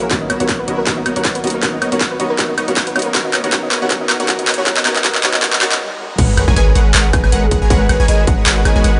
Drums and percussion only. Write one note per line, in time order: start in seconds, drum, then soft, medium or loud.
0.11 kick loud
0.11 clap soft
0.11 closed hi-hat medium
0.30 closed hi-hat medium
0.30 high woodblock medium
0.40 closed hi-hat medium
0.49 kick loud
0.49 clap medium
0.49 closed hi-hat medium
0.68 closed hi-hat medium
0.87 kick loud
0.87 clap medium
0.87 closed hi-hat medium
1.06 closed hi-hat medium
1.06 high woodblock medium
1.16 closed hi-hat medium
1.25 kick loud
1.25 clap medium
1.25 closed hi-hat medium
1.35 closed hi-hat medium
1.44 closed hi-hat soft
1.47 closed hi-hat medium
1.50 closed hi-hat medium
1.63 kick loud
1.63 clap medium
1.63 closed hi-hat medium
1.82 closed hi-hat medium
1.82 high woodblock medium
1.92 closed hi-hat medium
2.01 kick loud
2.01 clap medium
2.01 closed hi-hat medium
2.20 closed hi-hat medium
2.39 kick loud
2.39 clap medium
2.39 closed hi-hat medium
2.58 closed hi-hat medium
2.58 high woodblock medium
2.68 closed hi-hat medium
2.77 kick loud
2.77 clap medium
2.77 closed hi-hat medium
2.87 closed hi-hat medium
2.96 closed hi-hat soft
2.96 high woodblock medium
2.99 closed hi-hat medium
3.02 closed hi-hat medium
3.15 kick loud
3.15 clap medium
3.15 closed hi-hat medium
3.34 clap medium
3.34 closed hi-hat medium
3.34 high woodblock medium
3.44 closed hi-hat medium
3.53 kick loud
3.53 clap medium
3.53 closed hi-hat medium
3.72 clap medium
3.72 closed hi-hat medium
3.91 kick loud
3.91 clap medium
3.91 closed hi-hat medium
4.10 clap medium
4.10 closed hi-hat medium
4.10 high woodblock medium
4.20 closed hi-hat medium
4.29 kick loud
4.29 clap medium
4.29 closed hi-hat medium
4.39 closed hi-hat medium
4.48 clap medium
4.48 closed hi-hat soft
4.51 closed hi-hat medium
4.54 closed hi-hat medium
4.67 kick loud
4.67 clap medium
4.67 closed hi-hat medium
4.77 clap medium
4.86 clap loud
4.86 closed hi-hat medium
4.86 high woodblock medium
4.96 clap medium
4.96 closed hi-hat medium
5.05 kick medium
5.05 clap loud
5.05 closed hi-hat medium
5.15 clap medium
5.24 clap medium
5.24 closed hi-hat medium
5.34 clap medium
5.42 kick loud
5.42 clap loud
5.42 closed hi-hat medium
5.53 clap medium
5.61 clap loud
5.61 closed hi-hat medium
5.61 high woodblock medium
5.72 clap medium
5.72 closed hi-hat medium
6.18 kick loud
6.18 closed hi-hat medium
6.18 crash loud
6.37 closed hi-hat medium
6.37 high woodblock medium
6.48 kick loud
6.56 closed hi-hat medium
6.75 closed hi-hat medium
6.94 clap loud
6.94 closed hi-hat medium
7.13 kick loud
7.13 closed hi-hat medium
7.13 high woodblock medium
7.24 high woodblock medium
7.32 closed hi-hat medium
7.51 kick medium
7.51 closed hi-hat medium
7.70 kick loud
7.70 closed hi-hat medium
7.89 closed hi-hat medium
7.89 high woodblock medium
8.08 closed hi-hat medium
8.27 kick loud
8.27 closed hi-hat medium
8.46 clap loud
8.46 closed hi-hat medium
8.65 closed hi-hat medium
8.65 high woodblock medium
8.84 closed hi-hat medium